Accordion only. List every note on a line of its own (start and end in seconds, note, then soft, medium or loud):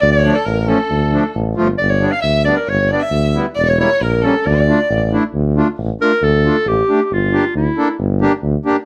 0.24 0.35 F3 medium
0.24 0.35 A3 medium
0.24 0.35 D4 medium
0.66 0.78 F3 medium
0.66 0.79 A3 medium
0.66 0.79 C#4 medium
1.12 1.23 F3 medium
1.12 1.24 A3 medium
1.12 1.24 D4 medium
1.55 1.67 F3 medium
1.55 1.68 A3 medium
1.55 1.68 F4 medium
2.00 2.12 G3 medium
2.00 2.12 B3 medium
2.00 2.12 D4 medium
2.45 2.57 G3 medium
2.45 2.57 B3 medium
2.45 2.57 D4 medium
2.89 3.01 G3 medium
2.89 3.01 B3 medium
2.89 3.02 D4 medium
3.35 3.46 G3 medium
3.35 3.46 B3 medium
3.35 3.46 E4 medium
3.78 3.90 G3 medium
3.78 3.90 A#3 medium
3.78 3.90 E4 medium
4.23 4.34 G3 medium
4.23 4.34 A#3 medium
4.23 4.35 C#4 medium
4.68 4.79 A3 medium
4.68 4.79 D4 medium
4.68 4.79 F4 medium
5.12 5.23 A3 medium
5.12 5.23 D4 medium
5.12 5.24 E4 medium
5.56 5.67 A3 medium
5.56 5.68 D4 medium
5.56 5.68 F4 medium
6.01 6.12 A3 medium
6.01 6.12 D4 medium
6.01 6.13 F4 medium
6.45 6.56 A3 medium
6.45 6.56 D4 medium
6.45 6.56 F4 medium
6.89 7.00 A3 medium
6.89 7.00 D4 medium
6.89 7.00 G4 medium
7.33 7.44 A#3 medium
7.33 7.44 D4 medium
7.33 7.45 G4 medium
7.77 7.88 A#3 medium
7.77 7.88 D4 medium
7.77 7.89 A4 medium
8.21 8.32 A#3 medium
8.21 8.32 D4 medium
8.21 8.33 G4 medium
8.65 8.76 A#3 medium
8.65 8.77 D4 medium
8.65 8.77 G4 medium